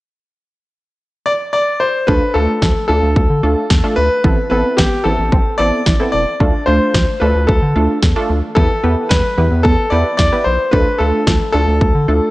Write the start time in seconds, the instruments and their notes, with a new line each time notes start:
1.26 grand piano D5
1.53 grand piano D5
1.80 grand piano C5
2.07 analog synth bass D2, analog polysynth A3 D4 F4 A4, synth arpeggio sound D4, grand piano B4, kick
2.34 analog synth bass D2, synth arpeggio sound A3, analog polysynth A3 D4 F4 A4, grand piano A4
2.62 analog synth bass D2, synth arpeggio sound F3, kick, snare
2.88 analog synth bass D2, analog polysynth A3 D4 F4 A4, synth arpeggio sound D4, grand piano A4
3.03 analog synth bass D2
3.16 analog synth bass D2, kick
3.30 analog synth bass D3
3.43 analog synth bass D2, analog polysynth A3 D4 F4 A4
3.70 analog synth bass E2, kick, snare
3.84 analog polysynth A3 D4 F4 A4
3.96 analog synth bass D2, synth arpeggio sound A3, grand piano B4
4.24 analog synth bass A1, synth arpeggio sound E3, analog polysynth B3 C4 E4 A4, kick
4.50 analog synth bass A1, analog polysynth B3 C4 E4 A4, synth arpeggio sound C4, grand piano B4
4.77 analog synth bass A1, synth arpeggio sound B3, grand piano G4, kick, snare
5.04 analog synth bass A1, synth arpeggio sound E3, analog polysynth B3 C4 E4 A4, grand piano A4
5.19 analog synth bass A1
5.32 analog synth bass A1, synth arpeggio sound C4, kick
5.58 analog synth bass A1, analog polysynth B3 C4 E4 A4, grand piano D5
5.86 analog synth bass A1, synth arpeggio sound E3, kick, snare
6.00 analog polysynth B3 C4 E4 A4
6.12 analog synth bass E1, grand piano D5
6.40 analog synth bass D2, analog polysynth A3 D4 F4 A4, synth arpeggio sound D4, kick
6.66 analog synth bass D2, synth arpeggio sound A3, analog polysynth A3 D4 F4 C5, grand piano C5
6.94 analog synth bass D2, synth arpeggio sound F3, kick, snare
7.20 analog synth bass D2, analog polysynth A3 D4 F4 A4, synth arpeggio sound D4, grand piano B4
7.35 analog synth bass D2
7.47 analog synth bass D2, grand piano A4, kick
7.62 analog synth bass D3
7.75 analog synth bass D2, analog polysynth A3 D4 F4 A4
8.03 analog synth bass E2, kick, snare
8.16 analog polysynth A3 D4 F4 A4
8.30 analog synth bass D2, synth arpeggio sound A3
8.55 analog synth bass E2, synth arpeggio sound E3, analog polysynth B3 E4 G4 B4, grand piano A4, kick
8.84 analog synth bass E2, synth arpeggio sound B3, analog polysynth B3 E4 G4 B4
9.09 analog synth bass E2, synth arpeggio sound G3, grand piano B4, kick, snare
9.38 analog synth bass E2, synth arpeggio sound E3, analog polysynth B3 E4 G4 B4
9.51 analog synth bass E2
9.63 analog synth bass E2, synth arpeggio sound B3, grand piano A4, kick
9.90 analog synth bass E2, analog polysynth B3 E4 G4 B4, grand piano D5
10.17 analog synth bass E2, synth arpeggio sound E3, grand piano D5, kick, snare
10.32 analog polysynth B3 E4 G4 B4
10.44 analog synth bass B1, grand piano C5
10.71 analog synth bass D2, analog polysynth A3 D4 F4 A4, synth arpeggio sound D4, grand piano B4, kick
10.98 analog synth bass D2, analog polysynth A3 D4 F4 A4, synth arpeggio sound A3, grand piano A4
11.27 analog synth bass D2, synth arpeggio sound F3, kick, snare
11.52 analog synth bass D2, analog polysynth A3 D4 F4 A4, synth arpeggio sound D4, grand piano A4
11.68 analog synth bass D2
11.81 analog synth bass D2, kick
11.95 analog synth bass D3
12.08 analog synth bass D2, analog polysynth A3 D4 F4 A4